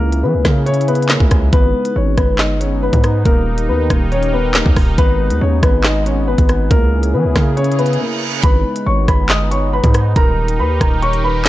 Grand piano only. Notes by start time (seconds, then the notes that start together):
Already playing: A#3 A#4
0.23 B3 B4
0.45 A#3 A#4
0.66 C#4 C#5
0.88 B3 B4
1.09 A#3 A#4
1.53 B3 B4
1.96 C#4 C#5
2.18 B3 B4
2.39 D#4 D#5
2.60 C#4 C#5
2.83 B3 B4
3.25 A#3 A#4
3.69 B3 B4
3.90 A#3 A#4
4.12 C#4 C#5
4.33 B3 B4
4.56 A#3 A#4
4.98 B3 B4
5.41 C#4 C#5
5.63 B3 B4
5.85 D#4 D#5
6.06 C#4 C#5
6.28 B3 B4
6.70 A#3 A#4
7.14 B3 B4
7.35 A#3 A#4
7.57 C#4 C#5
7.79 B3 B4
8.00 A#3 A#4
8.43 B4 B5
8.86 C#5 C#6
9.08 B4 B5
9.30 D#5 D#6
9.51 C#5 C#6
9.73 B4 B5
10.16 A#4 A#5
10.59 B4 B5
10.81 A#4 A#5
11.02 C#5 C#6
11.24 B4 B5